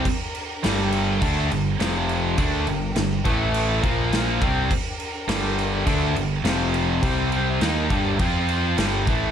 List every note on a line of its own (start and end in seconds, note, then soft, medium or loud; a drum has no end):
0.00 1.79 D4 medium
0.00 1.78 A#4 medium
0.00 1.78 G5 medium
0.00 1.79 A#5 medium
0.05 kick loud
0.05 crash medium
0.35 crash medium
0.64 1.19 G1 loud
0.64 1.21 G2 medium
0.64 1.21 D3 loud
0.64 1.22 G3 loud
0.64 snare loud
0.64 crash medium
0.92 crash medium
1.22 1.49 D2 medium
1.22 1.50 D3 medium
1.22 1.51 A3 loud
1.22 1.51 D4 loud
1.22 kick loud
1.22 crash medium
1.51 1.79 G1 medium
1.51 1.75 G2 medium
1.51 1.75 D3 medium
1.51 crash medium
1.79 2.35 F1 medium
1.79 2.37 F2 medium
1.79 2.37 C3 loud
1.79 2.38 F3 loud
1.79 2.39 C4 medium
1.79 2.38 F4 medium
1.79 2.38 F5 medium
1.79 2.38 C6 medium
1.79 snare loud
1.79 crash medium
2.09 crash medium
2.37 2.66 D2 medium
2.37 2.66 D3 medium
2.37 2.67 A3 medium
2.37 2.67 D4 loud
2.37 3.25 D4 medium
2.37 3.25 A#4 medium
2.37 3.25 G5 medium
2.37 3.25 A#5 medium
2.37 kick loud
2.37 crash medium
2.67 2.94 G1 medium
2.67 2.91 G2 medium
2.67 2.91 D3 medium
2.67 crash medium
2.96 3.24 G1 medium
2.96 3.20 G2 medium
2.96 3.20 D3 medium
2.96 snare loud
2.96 crash medium
3.24 3.80 A1 loud
3.24 3.82 A2 medium
3.24 3.83 E3 loud
3.24 3.83 A3 loud
3.24 3.83 A3 medium
3.24 3.83 E4 medium
3.24 3.83 E5 medium
3.24 3.83 A5 medium
3.24 kick loud
3.24 crash medium
3.54 crash medium
3.83 4.38 A#1 medium
3.83 4.41 A#2 medium
3.83 4.41 F3 medium
3.83 4.41 A#3 medium
3.83 4.41 A#3 loud
3.83 4.42 F4 medium
3.83 4.42 F5 medium
3.83 6.43 A#5 medium
3.83 kick loud
3.83 crash medium
4.13 snare loud
4.13 crash medium
4.42 4.69 C2 medium
4.42 4.70 C3 medium
4.42 4.70 G3 loud
4.42 4.71 C4 loud
4.42 6.44 D4 medium
4.42 6.44 A#4 medium
4.42 6.44 G5 medium
4.42 kick loud
4.42 crash medium
4.71 kick loud
4.71 crash medium
5.00 crash medium
5.28 5.83 G1 loud
5.28 5.86 G2 loud
5.28 5.85 D3 loud
5.28 5.87 G3 loud
5.28 snare loud
5.28 crash medium
5.59 crash medium
5.86 6.14 D2 loud
5.86 6.15 D3 medium
5.86 6.16 A3 loud
5.86 6.16 D4 loud
5.86 kick loud
5.86 crash medium
6.15 6.43 G1 medium
6.15 6.39 G2 medium
6.15 6.40 D3 medium
6.15 crash medium
6.44 6.99 F1 loud
6.44 7.02 F2 loud
6.44 7.01 C3 medium
6.44 7.02 F3 loud
6.44 7.61 C4 medium
6.44 7.03 F4 medium
6.44 7.03 F5 medium
6.44 7.61 C6 medium
6.44 snare loud
6.44 crash medium
6.74 crash medium
7.02 7.58 C2 loud
7.02 7.60 C3 medium
7.02 7.61 G3 loud
7.02 7.61 C4 loud
7.02 7.61 G4 medium
7.02 8.19 G5 medium
7.02 kick loud
7.02 crash medium
7.32 crash medium
7.61 7.89 D#2 medium
7.61 7.90 D#3 medium
7.61 7.90 A#3 medium
7.61 8.20 D4 medium
7.61 7.91 D#4 loud
7.61 8.20 A#4 medium
7.61 8.20 A#5 medium
7.61 snare loud
7.61 crash medium
7.90 8.18 G1 loud
7.90 8.20 G2 loud
7.90 8.19 D3 medium
7.90 8.20 G3 loud
7.90 kick loud
7.90 crash medium
8.19 8.74 F2 medium
8.19 8.78 F3 medium
8.19 8.78 C4 loud
8.19 8.79 C4 medium
8.19 8.78 F4 medium
8.19 8.78 F4 loud
8.19 8.78 F5 medium
8.19 8.78 C6 medium
8.19 kick loud
8.19 crash medium
8.49 crash medium
8.77 9.05 G1 medium
8.77 9.07 G2 loud
8.77 9.07 D3 loud
8.77 9.07 G3 loud
8.77 9.31 D4 medium
8.77 9.31 A#4 medium
8.77 9.31 G5 medium
8.77 9.31 A#5 medium
8.77 snare loud
8.77 crash medium
9.07 9.31 A1 loud
9.07 9.31 A2 medium
9.07 9.31 E3 medium
9.07 9.31 A3 loud
9.07 kick loud
9.07 crash medium